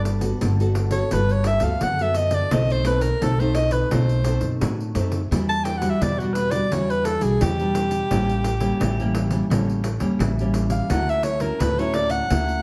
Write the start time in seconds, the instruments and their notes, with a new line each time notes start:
Already playing: upright bass G1, nylon-string guitar G3 B3 F#4 A4
0.05 pandeiro
0.21 nylon-string guitar B3 F#4 A4, pandeiro
0.41 upright bass G1, nylon-string guitar D3, pandeiro
0.60 nylon-string guitar B3 F#4 A4, pandeiro
0.75 pandeiro
0.91 nylon-string guitar B3 F#4 A4, soprano saxophone C#5, pandeiro
1.11 upright bass G1, nylon-string guitar G3 B3 F#4 A4, soprano saxophone B4, pandeiro
1.29 soprano saxophone C#5, pandeiro
1.44 soprano saxophone E5, pandeiro
1.60 upright bass D2, nylon-string guitar B3 F#4 A4, soprano saxophone F5, pandeiro
1.81 upright bass F#2, nylon-string guitar D3, soprano saxophone F#5, pandeiro
1.99 nylon-string guitar B3 F#4 A4, soprano saxophone E5, pandeiro
2.14 soprano saxophone D#5, pandeiro
2.31 soprano saxophone D5, pandeiro
2.51 upright bass B1, nylon-string guitar B2 A3 C4 D#4, soprano saxophone D#5, pandeiro
2.70 soprano saxophone C5, pandeiro
2.85 nylon-string guitar A3 C4 D#4, soprano saxophone B4, pandeiro
3.01 soprano saxophone A#4, pandeiro
3.21 upright bass B1, nylon-string guitar F#3 A3 C4 D#4, soprano saxophone A4, pandeiro
3.40 nylon-string guitar A3 C4 D#4, soprano saxophone C5, pandeiro
3.55 soprano saxophone D#5, pandeiro
3.71 soprano saxophone B4, pandeiro
3.91 upright bass B1, nylon-string guitar B2 A3 C4 D#4, soprano saxophone C5, pandeiro
4.09 pandeiro
4.24 nylon-string guitar A3 C4 D#4, pandeiro
4.41 upright bass F#2, pandeiro
4.61 upright bass A2, nylon-string guitar F#3, pandeiro
4.80 pandeiro
4.95 upright bass F#2, nylon-string guitar A3 C4 D#4, pandeiro
5.12 pandeiro
5.31 upright bass E2, nylon-string guitar E3 G3 D4 F#4, pandeiro
5.49 soprano saxophone A5, pandeiro
5.64 soprano saxophone G5, pandeiro
5.78 nylon-string guitar G3, soprano saxophone F#5, pandeiro
5.82 nylon-string guitar D4 F#4
5.90 soprano saxophone E5
6.01 upright bass E2, nylon-string guitar B2, soprano saxophone D5, pandeiro
6.19 nylon-string guitar G3 D4 F#4, soprano saxophone F#4, pandeiro
6.34 soprano saxophone B4, pandeiro
6.51 nylon-string guitar G3 D4 F#4, soprano saxophone D5, pandeiro
6.71 upright bass E2, nylon-string guitar E3 G3 D4 F#4, soprano saxophone C#5, pandeiro
6.90 soprano saxophone B4, pandeiro
7.05 soprano saxophone A4, pandeiro
7.21 upright bass B1, nylon-string guitar G3 D4 F#4, soprano saxophone G#4, pandeiro
7.41 upright bass E2, nylon-string guitar B2, soprano saxophone G4, pandeiro
7.59 nylon-string guitar G3 D4, pandeiro
7.75 pandeiro
7.91 pandeiro
8.11 upright bass A1, nylon-string guitar A2 G3 A#3 C#4, pandeiro
8.29 pandeiro
8.44 pandeiro
8.60 nylon-string guitar G3 A#3 C#4, pandeiro
8.80 upright bass A1, nylon-string guitar E3, pandeiro
9.00 nylon-string guitar G3 A#3 C#4, pandeiro
9.15 pandeiro
9.31 nylon-string guitar G3 A#3 C#4, pandeiro
9.50 upright bass A1, nylon-string guitar A2 G3 A#3 C#4, pandeiro
9.70 pandeiro
9.84 pandeiro
10.00 upright bass E2, nylon-string guitar G3 A#3 C#4, pandeiro
10.19 upright bass A1, nylon-string guitar E3, pandeiro
10.39 nylon-string guitar G3 A#3 C#4, pandeiro
10.54 pandeiro
10.70 soprano saxophone F5, pandeiro
10.90 upright bass D2, nylon-string guitar D3 F#3 C#4 E4, soprano saxophone F#5, pandeiro
11.09 soprano saxophone E5, pandeiro
11.23 soprano saxophone C#5, pandeiro
11.40 nylon-string guitar F#3 C#4 E4, soprano saxophone A#4, pandeiro
11.60 upright bass D2, nylon-string guitar A2, soprano saxophone B4, pandeiro
11.79 nylon-string guitar F#3 C#4 E4, soprano saxophone C#5, pandeiro
11.94 soprano saxophone D5, pandeiro
12.10 soprano saxophone F#5, pandeiro
12.30 upright bass D2, nylon-string guitar D3 F#3 C#4 E4, pandeiro
12.49 pandeiro